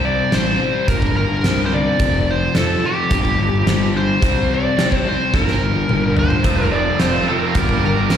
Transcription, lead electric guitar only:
0.05 0.33 D5 medium
0.35 0.88 C5 medium
0.88 1.15 A#4 medium
1.17 1.65 A#4 medium
1.66 1.72 C5 medium
1.74 2.30 D5 loud
2.31 2.55 C5 medium
2.57 2.85 A4 medium
2.86 3.92 G4 medium
3.97 4.53 C5 medium
4.54 4.98 D5 medium
4.98 5.09 C5 medium
5.09 5.35 C5 medium
5.35 6.14 A#4 medium
6.19 6.63 C5 medium
6.63 6.75 A#4 medium
6.71 7.01 D5 medium
6.99 7.26 C5 medium
7.29 7.84 A#4 medium
7.85 8.17 A#4 medium

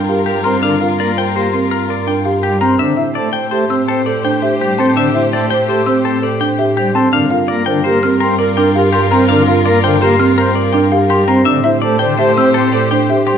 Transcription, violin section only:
0.00 2.57 F4 medium
0.00 2.58 A#4 medium
2.79 6.91 G4 medium
2.79 6.91 C5 medium
7.13 11.25 F4 medium
7.13 11.25 A#4 medium
11.45 13.38 G4 medium
11.45 13.38 C5 loud

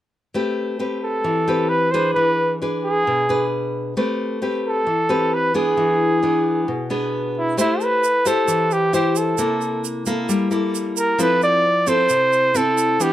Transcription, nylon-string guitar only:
0.34 1.23 A3 medium
0.34 0.76 C4 soft
0.34 0.76 G4 soft
0.34 0.76 B4 medium
0.79 1.44 C4 soft
0.79 1.44 G4 soft
0.79 1.44 B4 soft
1.24 2.13 E3 medium
1.48 1.89 C4 medium
1.48 1.89 G4 soft
1.48 1.89 B4 soft
1.94 2.57 D4 medium
1.94 2.57 G#4 medium
1.94 2.58 B4 medium
2.16 3.04 E3 medium
2.62 3.25 D4 soft
2.62 3.25 G#4 soft
2.62 3.25 B4 soft
3.07 3.94 B2 medium
3.29 3.93 D4 soft
3.29 3.93 G#4 medium
3.29 3.93 B4 medium
3.97 4.84 A3 medium
3.97 4.38 C4 medium
3.97 4.38 G4 soft
3.97 4.38 B4 medium
4.42 4.86 C4 soft
4.42 4.86 G4 soft
4.42 4.87 B4 soft
4.87 5.75 E3 medium
5.09 5.51 C4 medium
5.09 5.51 G4 medium
5.09 5.51 B4 medium
5.54 6.18 B3 medium
5.54 6.19 D4 medium
5.54 6.19 G#4 medium
5.77 6.65 E3 medium
6.23 6.67 B3 soft
6.23 6.67 D4 soft
6.23 6.68 G#4 soft
6.68 7.56 B2 medium
6.90 7.54 B3 medium
6.90 7.54 D4 medium
6.90 7.54 G#4 medium
7.57 8.46 A3 medium
7.57 8.02 E4 medium
7.57 8.03 G4 soft
7.57 8.03 C5 medium
8.25 8.90 E4 medium
8.25 8.90 G4 medium
8.25 8.90 C5 medium
8.48 9.36 E3 medium
8.93 9.35 E4 medium
8.93 9.35 G4 medium
8.93 9.35 C5 medium
9.38 10.26 C3 medium
9.38 10.02 A#3 medium
9.38 10.03 E4 soft
9.38 10.03 A4 medium
10.06 10.48 A#3 medium
10.06 10.48 E4 medium
10.06 10.48 A4 medium
10.29 11.17 G3 medium
10.51 11.15 A#3 medium
10.51 11.15 E4 medium
10.51 11.16 A4 medium
11.18 12.07 F3 medium
11.18 11.64 C4 medium
11.18 11.64 E4 soft
11.18 11.64 A4 medium
11.87 12.51 C4 medium
11.87 12.51 E4 medium
11.87 12.51 A4 medium
12.10 12.98 C3 medium
12.54 12.96 C4 medium
12.54 12.96 E4 medium
12.54 12.97 A4 medium
13.00 13.13 E3 medium
13.00 13.13 B3 medium
13.00 13.13 D4 medium

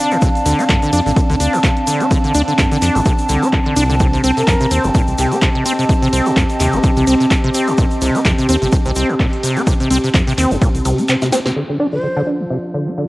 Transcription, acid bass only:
0.00 0.13 D4 medium
0.12 0.17 D3 medium
0.22 0.29 C3 medium
0.46 0.60 D3 medium
0.59 0.65 D4 medium
0.69 0.77 D3 medium
0.83 0.91 D3 medium
0.93 1.00 D4 loud
1.06 1.12 D3 medium
1.17 1.21 D3 medium
1.30 1.36 D3 loud
1.40 1.55 D4 medium
1.53 1.59 D3 medium
1.64 1.71 C3 medium
1.87 2.02 D3 medium
2.01 2.06 D4 medium
2.11 2.18 D3 medium
2.24 2.33 D3 medium
2.35 2.42 D4 loud
2.48 2.54 D3 medium
2.58 2.63 D3 medium
2.72 2.77 D3 loud
2.82 2.97 D4 medium
2.95 3.01 D3 medium
3.05 3.13 C3 medium
3.29 3.44 D3 medium
3.42 3.48 D4 medium
3.53 3.60 D3 medium
3.66 3.75 D3 medium
3.76 3.84 D4 loud
3.90 3.95 D3 medium
4.00 4.07 C3 medium
4.13 4.22 C3 medium
4.24 4.31 C4 loud
4.37 4.43 C3 medium
4.47 4.52 C3 medium
4.61 4.66 C3 loud
4.71 4.86 C4 medium
4.84 4.90 C3 medium
4.95 5.02 A#2 medium
5.18 5.33 C3 medium
5.32 5.37 C4 medium
5.42 5.49 C3 medium
5.55 5.64 C3 medium
5.65 5.73 C4 loud
5.79 5.84 C3 medium
5.89 5.93 C3 medium
6.02 6.08 C3 loud
6.13 6.27 C4 medium
6.26 6.32 C3 medium
6.36 6.44 A#2 medium
6.60 6.75 C3 medium
6.73 6.79 C4 medium
6.83 6.91 C3 medium
6.97 7.05 C3 medium
7.07 7.14 C4 loud
7.20 7.26 C3 medium
7.31 7.35 C3 medium
7.44 7.50 C3 loud
7.54 7.69 C4 medium
7.68 7.73 C3 medium
7.78 7.85 A#2 medium
8.02 8.16 C3 medium
8.15 8.21 C4 medium
8.25 8.33 C3 medium
8.38 8.47 C3 medium
8.49 8.56 C4 loud
8.62 8.68 C3 medium
8.72 8.77 C3 medium
8.86 8.91 C3 loud
8.96 9.11 C4 medium
9.09 9.15 C3 medium
9.20 9.27 A#2 medium
9.43 9.58 C3 medium
9.57 9.62 C4 medium
9.67 9.74 C3 medium
9.80 9.89 C3 medium
9.90 9.98 C4 loud
10.04 10.10 C3 medium
10.14 10.19 C3 medium
10.27 10.33 C3 loud
10.38 10.52 C4 medium
10.51 10.57 C3 medium
10.61 10.69 A#2 medium
10.85 11.00 C3 medium
10.98 11.04 C4 medium
11.09 11.16 C3 medium
11.22 11.31 C3 medium
11.32 11.40 C4 loud
11.46 11.51 C3 medium
11.56 11.63 D3 medium
11.69 11.78 D3 medium
11.80 11.87 D4 loud
11.93 11.99 D3 medium
12.03 12.08 D3 medium
12.16 12.22 D3 loud
12.27 12.41 D4 medium
12.40 12.46 D3 medium
12.50 12.58 C3 medium
12.74 12.89 D3 medium
12.87 12.93 D4 medium
12.98 13.05 D3 medium

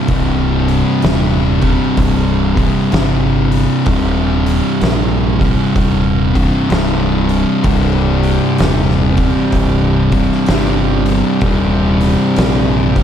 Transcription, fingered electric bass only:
0.09 0.82 C1 medium
1.04 1.76 D#1 medium
1.97 2.70 C1 medium
2.93 3.65 G1 medium
3.87 4.60 D#1 medium
4.82 5.54 A#1 medium
5.76 6.49 D#1 medium
6.71 7.43 C1 medium
7.64 8.37 C1 loud
8.60 9.32 D#1 medium
9.53 10.26 C1 medium
10.49 11.21 G1 loud
11.42 12.15 D#1 loud
12.38 13.03 A#1 medium

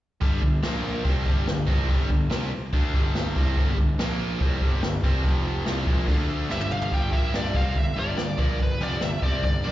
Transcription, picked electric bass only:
0.22 0.41 G1 medium
0.43 0.62 G1 medium
0.62 1.02 A#1 medium
1.05 1.25 C2 medium
1.26 1.46 G1 medium
1.48 1.67 G1 medium
1.68 1.88 C2 medium
1.89 2.08 G1 loud
2.10 2.29 G1 medium
2.31 2.50 C2 loud
2.52 muted picked electric bass stroke soft
2.73 2.92 D2 medium
2.94 3.33 G1 medium
3.37 3.55 C2 medium
3.57 3.76 G1 medium
3.78 3.97 G1 medium
3.99 4.37 A#1 medium
4.41 4.60 C2 medium
4.61 4.81 G1 medium
4.83 5.02 G1 medium
5.03 5.22 C2 medium
5.24 5.63 F1 medium
5.67 5.86 C2 medium
5.87 6.06 A#1 medium
6.08 6.47 D2 medium
6.50 6.89 G1 medium
6.92 7.11 G1 medium
7.13 7.32 A#1 medium
7.33 7.53 G1 medium
7.54 7.74 C2 medium
7.76 7.95 G1 medium
7.96 8.15 G1 medium
8.17 8.36 G1 medium
8.38 8.58 A#1 medium
8.60 8.78 G1 medium
8.79 8.99 F1 medium
9.00 9.20 G1 medium
9.22 9.42 C2 medium
9.43 9.63 G1 medium
9.65 9.72 A#1 medium

